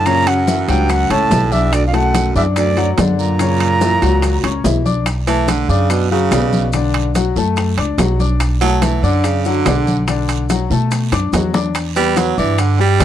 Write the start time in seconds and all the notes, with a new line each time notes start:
Already playing: F#2
0.06 A#2 C#3 C#4 C#5 A#5, high bongo, high conga, high timbale, long guiro, maracas
0.27 F#2 F#5, high bongo, high conga, high timbale, maracas
0.47 E3 E4 E5, high bongo, high conga, low timbale, short guiro, maracas
0.68 C#2 G2 F#3 F#4 F#5 G5, high bongo, high conga, high timbale, short guiro, maracas
0.89 F#2 F#5, high bongo, high conga, high timbale, long guiro, maracas
1.10 C#2 A2 C#4 C#5 A5 C#6, high bongo, high conga, high timbale, maracas
1.31 B1 E3 E4 E5, high bongo, low bongo, high conga, low timbale, short guiro, maracas
1.51 E2 D4 D5 E5 D6, high conga, short guiro, maracas
1.73 D2 D5, high bongo, high timbale, long guiro, maracas
1.87 F2 F5
1.93 F#2 A3 A4 F#5 A5, high bongo, high conga, high timbale, maracas
2.15 high bongo, high conga, high timbale, low timbale, short guiro, maracas
2.35 E2 F#2 D4 D5 E5 D6, high bongo, high conga, short guiro, maracas
2.56 D2 D5, high bongo, high conga, high timbale, long guiro, maracas
2.77 F#3 F#4 F#5, high bongo, high conga, high timbale, maracas
2.98 F#2 D3 D4 D5, high bongo, low bongo, high conga, high timbale, low timbale, short guiro, maracas
3.19 A#2 A#5, high conga, short guiro, maracas
3.39 C#3 C#4 C#5, high bongo, high conga, high timbale, long guiro, maracas
3.60 high bongo, high conga, high timbale, maracas
3.81 E3 E4 E5, high bongo, high conga, low timbale, short guiro, maracas
4.02 C#2 F#3 F#4 F#5, high bongo, high conga, high timbale, short guiro, maracas
4.22 high bongo, high conga, high timbale, long guiro, maracas
4.43 C#2 C#4 C#5 C#6, high bongo, high conga, high timbale, maracas
4.64 B1 E3 E4 E5, high bongo, low bongo, high conga, low timbale, short guiro, maracas
4.85 D4 D5 D6, high conga, short guiro, maracas
5.06 high bongo, high conga, high timbale, long guiro, maracas
5.27 E3 A3 A4 A5, high conga, high timbale, maracas
5.48 D3, high bongo, high conga, high timbale, low timbale, short guiro, maracas
5.69 F#2 C#3 D4 D5 D6, high conga, short guiro, maracas
5.90 B2, high bongo, high conga, high timbale, long guiro, maracas
6.11 C#3 F#3 F#4 F#5, high conga
6.31 B1 B2 B3 D5, high bongo, low bongo, high conga, high timbale, low timbale, short guiro, maracas
6.52 high conga, short guiro, maracas
6.73 D3 D4 D5, high bongo, high conga, high timbale, long guiro, maracas
6.94 high conga, high timbale
7.15 F#3 F#4 F#5, high bongo, high conga, high timbale, low timbale, short guiro, maracas
7.36 F#2 A3 A4 A5, high bongo, high conga, short guiro, maracas
7.57 high bongo, high conga, high timbale, long guiro, maracas
7.77 C#2 D4 D5 D6, high bongo, high conga, high timbale
7.98 B1 F#3 F#4 F#5, high bongo, low bongo, high conga, high timbale, low timbale, short guiro, maracas
8.19 D4 D5 D6, high bongo, high conga, short guiro, maracas
8.40 high bongo, high conga, high timbale, long guiro, maracas
8.61 F#3 A3 A4 A5, high conga, high timbale, maracas
8.82 E3, high bongo, high conga, high timbale, low timbale, short guiro, maracas
9.03 F#2 D3 D4 D5 D6, high conga, short guiro, maracas
9.24 C#3, high bongo, high conga, high timbale, long guiro, maracas
9.45 D3 F#3 F#4 F#5, high conga, maracas
9.66 B1 D3 D4 D5, high bongo, low bongo, high conga, high timbale, low timbale, short guiro, maracas
9.87 high conga, short guiro, maracas
10.08 D3 D4 D5, high bongo, high timbale, long guiro, maracas
10.29 high conga, high timbale, maracas
10.50 F#3 F#4 F#5, high bongo, high conga, high timbale, low timbale, short guiro, maracas
10.70 B2 A3 A4 A5, high bongo, high conga, short guiro, maracas
10.91 high bongo, high conga, high timbale, long guiro, maracas
11.12 F#2 D4 D5 D6, high bongo, high conga, high timbale, maracas
11.33 E2 F#3 F#4 F#5, low bongo, high conga, high timbale, low timbale, short guiro, maracas
11.54 D4 D5 D6, low bongo, high conga, short guiro, maracas
11.75 high bongo, high conga, high timbale, long guiro, maracas
11.96 G3 B3 B4 B5, high conga, high timbale, maracas
12.16 F#3, high bongo, high conga, high timbale, low timbale, short guiro, maracas
12.38 G2 E3 D4 D5 D6, high conga, short guiro, maracas
12.58 D3, high bongo, high conga, high timbale, long guiro, maracas
12.79 G3 G4 G5, high conga
13.00 E2 D3 D4 D5, high bongo, low bongo, high conga, high timbale, low timbale, short guiro, maracas